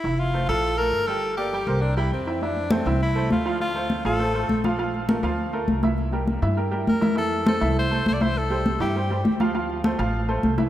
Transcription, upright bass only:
X:1
M:4/4
L:1/8
Q:1/4=202
K:F
V:1 name="Upright bass" clef=bass
F,,,3 B,,,3 G,,,2- | G,,,3 C,,3 F,,2- | F,,3 C,,3 D,,2- | D,,3 A,,,3 B,,,2- |
B,,,3 D,,3 C,,2- | C,,3 G,,3 z2 | z3 C,,3 C,,2- | C,,3 G,,3 D,,2- |
D,,3 A,,,3 C,,2 |]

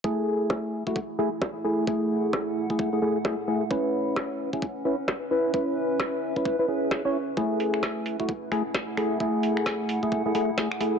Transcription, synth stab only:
X:1
M:4/4
L:1/16
Q:"Swing 16ths" 1/4=131
K:F#m
V:1 name="Synth stab"
[A,EG]6- [A,EG] [A,EF] z2 [A,EG] z3 [A,EG]2 | [A,EG]6- [A,EG] [A,EG]2 [A,EG] [A,EG] z [A,EG] z [A,EG] z | [CEB]6- [CEB] [CEG] z2 [CEB] z3 [CEB]2 | [CEB]6- [CEB] [CEB]2 [CEB] [CEG]3 [CEc] z2 |
[A,EG]6- [A,EG] [A,EF] z2 [A,EG] z3 [A,EG]2 | [A,EG]6- [A,EG] [A,EG]2 [A,EG] [A,EG] z [A,EG] z [A,EG] z |]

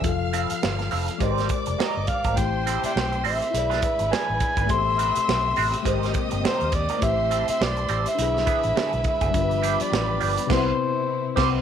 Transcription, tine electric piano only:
X:1
M:4/4
L:1/8
Q:"Swing 16ths" 1/4=103
K:Am
V:1 name="Tine electric piano"
[F,FAf]4 [_A,G_B=Bc]4 | [A,EGc]4 [E^Gd]4 | [A,GAc]4 [_A,G_Bc]4 | [A,EGBc]4 [DE^G]4 |
[G,DF_B=B]4 [C,CEB] z2 [Cc] |]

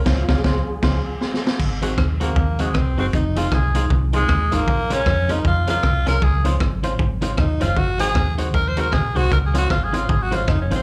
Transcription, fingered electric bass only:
X:1
M:4/4
L:1/8
Q:"Swing" 1/4=155
K:Abmix
V:1 name="Fingered electric bass" clef=bass
D,, D,, D,, z D,, z3 | A,,,2 E,,2 E,,2 C,, G,,, | F,,,2 C,,2 C,,2 E,, A,,, | B,,,2 F,,2 F,,2 C,, C,, |
D,,2 A,,,2 A,,,2 E,, G,,, | A,,,2 E,,2 E,,2 B,,, C,, | D,,2 A,,,2 A,,,2 F,,, A,,, |]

